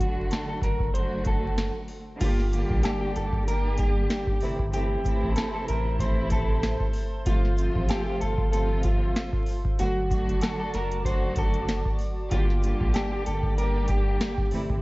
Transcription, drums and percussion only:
0.00 kick, closed hi-hat
0.31 snare, closed hi-hat
0.62 kick, snare, closed hi-hat
0.80 kick
0.95 closed hi-hat
1.25 kick, closed hi-hat
1.58 snare, closed hi-hat
1.88 open hi-hat
2.21 kick, closed hi-hat, crash, shaker
2.40 snare
2.52 closed hi-hat, shaker
2.70 kick
2.83 snare, closed hi-hat, high woodblock, shaker
3.16 closed hi-hat, shaker
3.33 kick
3.48 closed hi-hat, shaker
3.77 kick, closed hi-hat, shaker
4.10 snare, closed hi-hat, shaker
4.27 kick
4.41 open hi-hat, shaker
4.59 kick
4.73 closed hi-hat, shaker
5.05 kick, closed hi-hat, shaker
5.36 snare, closed hi-hat, high woodblock, shaker
5.68 closed hi-hat, shaker
5.99 kick, closed hi-hat, shaker
6.30 kick, closed hi-hat, shaker
6.63 snare, closed hi-hat, shaker
6.80 kick
6.93 open hi-hat, shaker
7.26 kick, closed hi-hat, shaker
7.45 snare
7.57 closed hi-hat, shaker
7.76 kick
7.89 snare, closed hi-hat, high woodblock, shaker
8.21 closed hi-hat, shaker
8.38 kick
8.53 closed hi-hat, shaker
8.83 kick, closed hi-hat, shaker
9.16 snare, closed hi-hat, shaker
9.33 kick
9.46 open hi-hat, shaker
9.65 kick
9.79 closed hi-hat, shaker
10.10 kick, closed hi-hat, shaker
10.29 closed hi-hat
10.41 snare, closed hi-hat, high woodblock, shaker
10.74 snare, closed hi-hat, shaker
10.91 closed hi-hat
11.05 kick, closed hi-hat, shaker
11.36 kick, closed hi-hat, shaker
11.54 closed hi-hat
11.68 snare, closed hi-hat, shaker
11.85 kick
11.99 open hi-hat, shaker
12.31 kick, closed hi-hat, shaker
12.50 snare
12.63 closed hi-hat, shaker
12.81 kick
12.94 snare, closed hi-hat, high woodblock, shaker
13.26 closed hi-hat, shaker
13.43 kick
13.58 closed hi-hat, shaker
13.88 kick, closed hi-hat, shaker
14.21 snare, closed hi-hat, shaker
14.38 kick
14.51 open hi-hat, shaker
14.70 kick

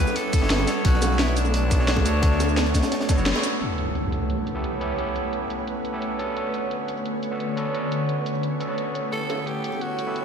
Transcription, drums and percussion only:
0.07 snare, high bongo, shaker
0.16 closed hi-hat
0.33 kick, closed hi-hat, open hi-hat, shaker
0.42 snare
0.50 snare, closed hi-hat
0.59 closed hi-hat, high bongo
0.67 snare, closed hi-hat, shaker
0.85 kick, closed hi-hat
0.94 snare
1.02 snare, closed hi-hat, high bongo, shaker
1.11 snare
1.19 snare, closed hi-hat
1.28 snare, closed hi-hat
1.37 closed hi-hat, shaker
1.45 high bongo, shaker
1.54 closed hi-hat
1.71 kick, snare, closed hi-hat, shaker
1.80 snare
1.88 snare, closed hi-hat
1.96 kick, high bongo
2.06 closed hi-hat, shaker
2.22 kick, closed hi-hat
2.31 snare
2.40 snare, closed hi-hat, high bongo, shaker
2.49 shaker
2.57 snare, closed hi-hat
2.66 snare, closed hi-hat
2.74 kick, snare, closed hi-hat, shaker
2.82 snare, closed hi-hat, high bongo, shaker
2.91 snare, closed hi-hat
3.00 snare, closed hi-hat
3.08 kick, snare, closed hi-hat, shaker
3.18 closed hi-hat, shaker
3.26 snare, closed hi-hat
3.35 snare, closed hi-hat, high bongo
3.43 closed hi-hat, shaker
3.61 closed hi-hat
3.78 closed hi-hat, shaker
3.95 closed hi-hat
4.12 closed hi-hat, shaker
4.21 shaker
4.30 closed hi-hat
4.47 closed hi-hat, shaker
4.64 closed hi-hat
4.81 closed hi-hat, shaker
4.98 closed hi-hat
5.16 closed hi-hat, shaker
5.33 closed hi-hat
5.50 closed hi-hat, shaker
5.59 shaker
5.67 closed hi-hat
5.85 closed hi-hat, shaker
6.02 closed hi-hat
6.19 closed hi-hat, shaker
6.37 closed hi-hat
6.54 closed hi-hat, shaker
6.71 closed hi-hat
6.88 closed hi-hat, shaker
6.97 shaker
7.05 closed hi-hat
7.23 closed hi-hat, shaker
7.40 closed hi-hat
7.57 closed hi-hat, shaker
7.75 closed hi-hat
7.92 closed hi-hat, shaker
8.09 closed hi-hat
8.26 closed hi-hat, shaker
8.35 shaker
8.43 closed hi-hat
8.61 closed hi-hat, shaker
8.78 closed hi-hat
8.95 closed hi-hat, shaker
9.12 closed hi-hat
9.30 closed hi-hat, high bongo, shaker
9.47 closed hi-hat
9.64 closed hi-hat, shaker
9.72 high bongo, shaker
9.81 closed hi-hat
9.99 closed hi-hat, shaker
10.16 closed hi-hat

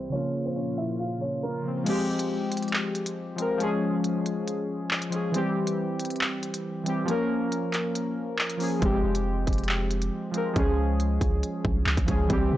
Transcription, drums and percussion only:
1.86 closed hi-hat, crash
2.19 closed hi-hat
2.52 closed hi-hat
2.57 closed hi-hat
2.63 closed hi-hat
2.68 closed hi-hat
2.73 clap
2.95 closed hi-hat
3.06 closed hi-hat
3.38 closed hi-hat
3.60 closed hi-hat
4.04 closed hi-hat
4.26 closed hi-hat
4.48 closed hi-hat
4.91 clap
5.02 closed hi-hat
5.12 closed hi-hat
5.34 closed hi-hat
5.67 closed hi-hat
6.00 closed hi-hat
6.05 closed hi-hat
6.10 closed hi-hat
6.16 closed hi-hat
6.21 clap
6.43 closed hi-hat
6.54 closed hi-hat
6.86 closed hi-hat
7.08 closed hi-hat
7.52 closed hi-hat
7.73 clap, closed hi-hat
7.95 closed hi-hat
8.39 clap
8.50 closed hi-hat
8.60 open hi-hat
8.82 kick, closed hi-hat
9.15 closed hi-hat
9.47 kick, closed hi-hat
9.53 closed hi-hat
9.58 closed hi-hat
9.64 closed hi-hat
9.69 clap
9.91 closed hi-hat
10.02 closed hi-hat
10.34 closed hi-hat
10.56 kick, closed hi-hat
11.00 closed hi-hat
11.21 kick, closed hi-hat
11.43 closed hi-hat
11.65 kick
11.86 clap
11.97 kick, closed hi-hat
12.08 kick, closed hi-hat
12.30 kick, closed hi-hat

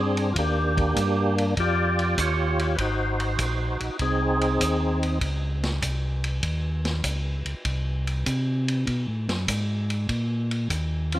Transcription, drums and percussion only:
0.17 ride
0.36 kick, ride
0.77 kick, ride
0.96 kick, hi-hat pedal, ride
1.38 ride
1.57 kick, ride
1.99 ride
2.18 kick, hi-hat pedal, ride
2.59 ride
2.78 kick, ride
3.20 ride
3.39 kick, hi-hat pedal, ride
3.80 ride
3.99 kick, ride
4.41 ride
4.60 kick, hi-hat pedal, ride
5.03 ride
5.21 kick, ride
5.63 snare, ride
5.82 kick, hi-hat pedal, ride
6.24 ride
6.43 kick, ride
6.85 snare, ride
7.04 kick, hi-hat pedal, ride
7.46 ride
7.65 kick, ride
8.07 ride
8.26 kick, hi-hat pedal, ride
8.68 ride
8.87 kick, ride
9.29 snare, ride
9.48 kick, hi-hat pedal, ride
9.90 ride
10.09 kick, ride
10.51 ride
10.70 kick, hi-hat pedal, ride
11.12 ride

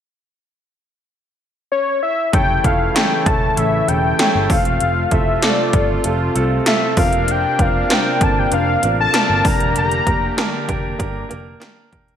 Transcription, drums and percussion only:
2.33 kick, closed hi-hat
2.64 kick, closed hi-hat
2.96 snare, closed hi-hat
3.26 kick, closed hi-hat
3.57 closed hi-hat
3.88 closed hi-hat
4.19 snare, closed hi-hat
4.50 kick, open hi-hat
4.65 closed hi-hat
4.80 closed hi-hat
5.11 kick, closed hi-hat
5.42 snare, closed hi-hat
5.73 kick, closed hi-hat
6.04 closed hi-hat
6.36 closed hi-hat
6.66 snare, closed hi-hat
6.97 kick, open hi-hat
7.13 closed hi-hat
7.28 closed hi-hat
7.59 kick, closed hi-hat
7.90 snare, closed hi-hat
8.21 kick, closed hi-hat
8.52 closed hi-hat
8.83 closed hi-hat
9.14 snare, closed hi-hat
9.45 kick, open hi-hat
9.60 closed hi-hat
9.76 closed hi-hat
9.91 closed hi-hat
10.07 kick, closed hi-hat
10.38 snare, closed hi-hat
10.69 kick, closed hi-hat
11.00 kick, closed hi-hat
11.31 closed hi-hat
11.62 snare, closed hi-hat
11.93 kick, closed hi-hat
12.08 closed hi-hat

